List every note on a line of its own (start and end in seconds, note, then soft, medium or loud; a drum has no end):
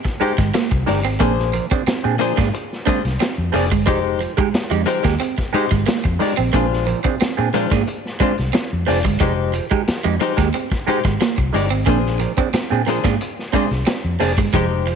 0.05 muted clean electric guitar stroke soft
0.05 kick medium
0.05 snare soft
0.20 0.32 G#3 loud
0.20 0.35 G#3 medium
0.20 0.33 D#4 medium
0.20 0.35 D#4 medium
0.20 0.33 G4 medium
0.20 0.35 G4 medium
0.20 0.35 C5 medium
0.20 muted fingered electric bass stroke soft
0.20 closed hi-hat medium
0.38 0.50 G#1 medium
0.38 0.51 G#3 medium
0.38 muted clean electric guitar stroke soft
0.38 kick loud
0.38 snare soft
0.38 closed hi-hat soft
0.54 0.68 A#3 medium
0.54 muted clean electric guitar stroke soft
0.54 snare loud
0.54 closed hi-hat medium
0.71 0.83 C2 medium
0.71 muted clean electric guitar stroke soft
0.71 kick loud
0.86 1.05 G1 medium
0.86 0.99 G#3 loud
0.86 1.01 G#3 medium
0.86 0.99 D#4 loud
0.86 1.01 D#4 medium
0.86 0.99 G4 loud
0.86 1.02 G4 medium
0.86 1.02 D5 medium
0.86 snare soft
0.86 open hi-hat medium
1.05 1.17 G#1 medium
1.05 1.17 C4 medium
1.05 muted clean electric guitar stroke soft
1.19 1.59 A#1 loud
1.19 1.51 A#3 medium
1.19 1.35 A#3 medium
1.19 1.32 C4 medium
1.19 1.32 D4 medium
1.19 1.51 D4 medium
1.19 1.33 G#4 loud
1.19 1.52 G#4 medium
1.19 1.52 C5 medium
1.19 kick loud
1.19 closed hi-hat medium
1.39 snare soft
1.53 1.66 A#2 medium
1.53 1.66 F3 medium
1.53 muted clean electric guitar stroke soft
1.53 closed hi-hat medium
1.71 1.82 C4 medium
1.71 1.84 C4 medium
1.71 1.82 D4 medium
1.71 1.82 G#4 medium
1.71 muted clean electric guitar stroke soft
1.71 kick loud
1.87 2.02 C4 medium
1.87 muted fingered electric bass stroke medium
1.87 snare loud
1.87 closed hi-hat medium
2.04 2.17 A#2 loud
2.04 2.15 C4 medium
2.04 2.15 D4 medium
2.04 2.15 G#4 medium
2.04 muted clean electric guitar stroke soft
2.19 2.32 A#2 medium
2.19 2.32 F3 medium
2.19 2.38 A#3 medium
2.19 2.38 D4 medium
2.19 2.37 G#4 loud
2.19 2.36 C5 loud
2.19 muted clean electric guitar stroke soft
2.19 closed hi-hat medium
2.37 2.50 G#2 medium
2.37 2.50 A#3 medium
2.37 2.48 C4 medium
2.37 2.49 D4 medium
2.37 2.49 G#4 medium
2.37 muted clean electric guitar stroke medium
2.37 kick medium
2.37 snare soft
2.37 closed hi-hat medium
2.54 muted clean electric guitar stroke soft
2.54 closed hi-hat medium
2.73 snare soft
2.86 3.01 G#3 medium
2.86 3.01 A#3 medium
2.86 2.99 C4 medium
2.86 2.99 D4 medium
2.86 3.01 D4 medium
2.86 2.99 G#4 loud
2.86 3.02 G#4 medium
2.86 3.02 C5 medium
2.86 muted fingered electric bass stroke soft
2.86 kick medium
2.86 closed hi-hat medium
3.05 3.17 C2 medium
3.05 muted clean electric guitar stroke soft
3.05 snare soft
3.05 closed hi-hat medium
3.20 3.35 C4 medium
3.20 muted clean electric guitar stroke soft
3.20 snare loud
3.20 closed hi-hat loud
3.38 3.50 F2 medium
3.52 3.72 F1 loud
3.52 3.68 A#3 medium
3.52 3.65 C4 loud
3.52 3.66 D4 medium
3.52 3.68 D4 medium
3.52 3.66 G#4 loud
3.52 3.68 G#4 medium
3.52 3.69 D5 medium
3.52 muted clean electric guitar stroke soft
3.52 snare soft
3.52 open hi-hat medium
3.72 3.87 G1 loud
3.72 3.84 G#3 medium
3.72 muted clean electric guitar stroke soft
3.72 kick loud
3.86 4.26 F1 loud
3.86 4.01 F3 medium
3.86 3.99 G#3 medium
3.86 4.18 G#3 medium
3.86 3.99 D#4 medium
3.86 4.18 D#4 medium
3.86 3.99 G4 medium
3.86 4.19 G4 loud
3.86 4.19 C5 medium
3.86 kick loud
3.86 closed hi-hat medium
4.19 4.32 F3 medium
4.19 muted clean electric guitar stroke soft
4.19 closed hi-hat medium
4.37 4.49 G#3 medium
4.37 4.51 G#3 medium
4.37 4.49 D#4 medium
4.37 4.49 G4 medium
4.37 muted clean electric guitar stroke soft
4.37 kick loud
4.54 muted fingered electric bass stroke soft
4.54 snare loud
4.54 closed hi-hat medium
4.70 4.83 F2 medium
4.70 4.82 G#3 medium
4.70 4.84 G#3 medium
4.70 4.82 D#4 medium
4.70 4.82 G4 loud
4.70 muted clean electric guitar stroke medium
4.86 4.99 F3 medium
4.86 5.04 G#3 medium
4.86 5.05 D#4 medium
4.86 5.04 G4 medium
4.86 5.04 C5 loud
4.86 muted clean electric guitar stroke soft
4.86 closed hi-hat medium
5.03 5.17 D#2 medium
5.03 5.15 G#3 medium
5.03 5.17 A#3 medium
5.03 5.15 D#4 medium
5.03 5.15 G4 loud
5.03 muted clean electric guitar stroke soft
5.03 kick medium
5.03 snare soft
5.03 closed hi-hat medium
5.20 5.34 C4 medium
5.20 muted clean electric guitar stroke soft
5.20 closed hi-hat loud
5.38 muted clean electric guitar stroke soft
5.38 kick medium
5.38 snare soft
5.53 5.66 G#3 loud
5.53 5.68 G#3 medium
5.53 5.66 D#4 medium
5.53 5.68 D#4 medium
5.53 5.66 G4 loud
5.53 5.68 G4 medium
5.53 5.69 C5 medium
5.53 muted fingered electric bass stroke soft
5.53 closed hi-hat medium
5.71 5.83 G#1 medium
5.71 5.84 G#3 medium
5.71 muted clean electric guitar stroke soft
5.71 kick loud
5.71 snare soft
5.71 closed hi-hat soft
5.86 6.01 A#3 medium
5.86 muted clean electric guitar stroke soft
5.86 muted fingered electric bass stroke soft
5.86 snare loud
5.86 closed hi-hat medium
6.04 6.17 F2 loud
6.04 muted clean electric guitar stroke soft
6.04 kick loud
6.19 6.32 G#3 loud
6.19 6.34 G#3 medium
6.19 6.32 D#4 medium
6.19 6.35 D#4 medium
6.19 6.32 G4 loud
6.19 6.35 G4 medium
6.19 6.35 D5 medium
6.19 snare soft
6.19 open hi-hat medium
6.37 6.50 A#1 loud
6.37 6.50 C4 medium
6.37 muted clean electric guitar stroke soft
6.53 6.92 A#1 loud
6.53 6.85 G#3 medium
6.53 6.68 A#3 medium
6.53 6.66 C4 medium
6.53 6.66 D4 medium
6.53 6.85 D4 medium
6.53 6.86 F4 medium
6.53 6.66 G#4 loud
6.53 6.86 C5 medium
6.53 kick loud
6.53 closed hi-hat medium
6.73 snare soft
6.86 6.99 A#2 medium
6.86 6.99 F3 medium
6.86 muted clean electric guitar stroke soft
6.86 closed hi-hat medium
7.04 7.15 C4 medium
7.04 7.17 C4 medium
7.04 7.15 D4 medium
7.04 7.15 G#4 medium
7.04 muted clean electric guitar stroke soft
7.04 kick loud
7.21 7.35 C4 medium
7.21 muted fingered electric bass stroke soft
7.21 snare loud
7.21 closed hi-hat medium
7.37 7.50 A#2 loud
7.37 7.48 C4 medium
7.37 7.49 D4 medium
7.37 7.49 G#4 medium
7.37 muted clean electric guitar stroke medium
7.53 7.66 A#2 medium
7.53 7.66 F3 medium
7.53 7.72 G#3 loud
7.53 7.72 D4 loud
7.53 7.71 F4 medium
7.53 7.70 C5 medium
7.53 muted clean electric guitar stroke soft
7.53 closed hi-hat medium
7.71 7.83 G#2 medium
7.71 7.84 A#3 medium
7.71 7.82 C4 medium
7.71 7.82 D4 medium
7.71 7.82 G#4 medium
7.71 muted clean electric guitar stroke medium
7.71 kick medium
7.71 snare soft
7.71 closed hi-hat medium
7.87 muted clean electric guitar stroke soft
7.87 closed hi-hat medium
8.05 snare soft
8.20 8.35 G#3 medium
8.20 8.34 G#3 medium
8.20 8.32 C4 loud
8.20 8.33 D4 medium
8.20 8.35 D4 medium
8.20 8.35 F4 medium
8.20 8.33 G#4 loud
8.20 8.35 C5 medium
8.20 muted fingered electric bass stroke soft
8.20 kick medium
8.20 closed hi-hat medium
8.38 8.51 C2 medium
8.38 muted clean electric guitar stroke soft
8.38 snare soft
8.38 closed hi-hat soft
8.53 8.68 C4 medium
8.53 muted clean electric guitar stroke medium
8.53 snare loud
8.53 closed hi-hat medium
8.73 8.84 F2 medium
8.86 9.05 F1 loud
8.86 9.01 G#3 medium
8.86 8.99 C4 loud
8.86 8.99 D4 medium
8.86 9.02 D4 medium
8.86 9.02 F4 medium
8.86 8.99 G#4 loud
8.86 9.02 D5 medium
8.86 muted clean electric guitar stroke soft
8.86 snare soft
8.86 open hi-hat medium
9.05 9.17 G1 loud
9.05 9.17 G#3 medium
9.05 muted clean electric guitar stroke soft
9.05 kick medium
9.20 9.59 F1 loud
9.20 9.35 F3 medium
9.20 9.32 G#3 medium
9.20 9.52 G#3 medium
9.20 9.32 D#4 medium
9.20 9.52 D#4 medium
9.20 9.33 G4 medium
9.20 9.52 G4 medium
9.20 9.52 C5 loud
9.20 kick loud
9.20 closed hi-hat medium
9.53 9.66 F3 medium
9.53 muted clean electric guitar stroke soft
9.53 closed hi-hat medium
9.71 9.82 G#3 medium
9.71 9.84 G#3 medium
9.71 9.82 D#4 medium
9.71 9.82 G4 medium
9.71 muted clean electric guitar stroke soft
9.71 kick loud
9.87 muted fingered electric bass stroke soft
9.87 snare loud
9.87 closed hi-hat medium
10.04 10.17 F2 medium
10.04 10.15 G#3 medium
10.04 10.17 G#3 medium
10.04 10.15 D#4 medium
10.04 10.15 G4 medium
10.04 muted clean electric guitar stroke soft
10.19 10.32 F3 medium
10.19 10.38 G#3 medium
10.19 10.39 D#4 loud
10.19 10.39 G4 loud
10.19 10.38 C5 medium
10.19 muted clean electric guitar stroke soft
10.19 closed hi-hat medium
10.37 10.50 D#2 loud
10.37 10.48 G#3 medium
10.37 10.51 A#3 medium
10.37 10.48 D#4 medium
10.37 10.49 G4 medium
10.37 muted clean electric guitar stroke medium
10.37 kick medium
10.37 snare soft
10.37 closed hi-hat medium
10.54 10.68 C4 medium
10.54 muted clean electric guitar stroke soft
10.54 closed hi-hat medium
10.71 muted clean electric guitar stroke soft
10.71 kick medium
10.71 snare soft
10.87 10.99 G#3 medium
10.87 11.01 G#3 medium
10.87 10.99 D#4 medium
10.87 11.02 D#4 medium
10.87 10.99 G4 loud
10.87 11.02 G4 medium
10.87 11.02 C5 medium
10.87 muted fingered electric bass stroke soft
10.87 closed hi-hat medium
11.04 11.16 G#1 medium
11.04 11.18 G#3 medium
11.04 muted clean electric guitar stroke medium
11.04 kick loud
11.04 snare soft
11.04 closed hi-hat soft
11.20 11.35 A#3 medium
11.20 muted clean electric guitar stroke soft
11.20 snare loud
11.20 closed hi-hat medium
11.38 11.50 C2 medium
11.38 muted clean electric guitar stroke soft
11.38 kick medium
11.53 11.71 G1 loud
11.53 11.65 G#3 medium
11.53 11.68 G#3 medium
11.53 11.66 D#4 medium
11.53 11.68 D#4 medium
11.53 11.66 G4 loud
11.53 11.69 G4 medium
11.53 11.69 D5 medium
11.53 snare soft
11.53 open hi-hat medium
11.70 11.83 G#1 medium
11.70 11.84 C4 medium
11.70 muted clean electric guitar stroke soft
11.86 12.25 A#1 medium
11.86 12.01 A#3 medium
11.86 12.18 A#3 medium
11.86 11.99 C4 medium
11.86 11.99 D4 medium
11.86 12.19 D4 medium
11.86 11.99 G#4 medium
11.86 12.19 G#4 medium
11.86 12.19 C5 medium
11.86 kick loud
11.86 closed hi-hat medium
12.06 snare soft
12.19 12.32 A#2 medium
12.19 12.32 F3 medium
12.19 muted clean electric guitar stroke soft
12.19 closed hi-hat medium
12.37 12.48 C4 medium
12.37 12.51 C4 medium
12.37 12.48 D4 medium
12.37 12.49 G#4 medium
12.37 muted clean electric guitar stroke soft
12.37 kick loud
12.54 12.68 C4 medium
12.54 muted fingered electric bass stroke medium
12.54 snare loud
12.54 closed hi-hat loud
12.70 12.83 A#2 medium
12.70 12.82 C4 medium
12.70 12.82 D4 medium
12.70 12.82 G#4 medium
12.70 muted clean electric guitar stroke soft
12.86 12.99 A#2 medium
12.86 12.99 F3 medium
12.86 13.05 A#3 medium
12.86 13.05 D4 medium
12.86 13.05 G#4 medium
12.86 13.05 C5 medium
12.86 muted clean electric guitar stroke soft
12.86 closed hi-hat medium
13.04 13.16 G#2 medium
13.04 13.17 A#3 medium
13.04 13.15 C4 medium
13.04 13.15 D4 medium
13.04 13.15 G#4 medium
13.04 muted clean electric guitar stroke medium
13.04 kick medium
13.04 snare soft
13.04 closed hi-hat medium
13.21 muted clean electric guitar stroke soft
13.21 closed hi-hat medium
13.39 snare soft
13.53 13.68 G#3 medium
13.53 13.68 A#3 medium
13.53 13.65 C4 loud
13.53 13.65 D4 loud
13.53 13.68 D4 medium
13.53 13.66 G#4 loud
13.53 13.68 G#4 medium
13.53 13.69 C5 medium
13.53 muted fingered electric bass stroke soft
13.53 kick medium
13.53 closed hi-hat medium
13.71 13.83 C2 medium
13.71 muted clean electric guitar stroke medium
13.71 snare soft
13.71 closed hi-hat soft
13.86 14.01 C4 medium
13.86 muted clean electric guitar stroke soft
13.86 snare loud
13.86 closed hi-hat medium
14.05 14.16 F2 loud
14.20 14.38 F1 medium
14.20 14.34 A#3 medium
14.20 14.32 C4 medium
14.20 14.32 D4 loud
14.20 14.35 D4 medium
14.20 14.32 G#4 loud
14.20 14.35 G#4 medium
14.20 14.35 D5 medium
14.20 muted clean electric guitar stroke soft
14.20 snare soft
14.20 open hi-hat medium
14.38 14.50 G1 loud
14.38 14.51 G#3 medium
14.38 muted clean electric guitar stroke medium
14.38 kick loud
14.53 14.92 F1 loud
14.53 14.68 F3 loud
14.53 14.65 G#3 medium
14.53 14.85 G#3 medium
14.53 14.66 D#4 medium
14.53 14.85 D#4 medium
14.53 14.66 G4 loud
14.53 14.85 G4 loud
14.53 14.86 C5 medium
14.53 kick medium
14.53 closed hi-hat medium
14.87 14.95 F3 medium
14.87 muted clean electric guitar stroke soft
14.87 closed hi-hat medium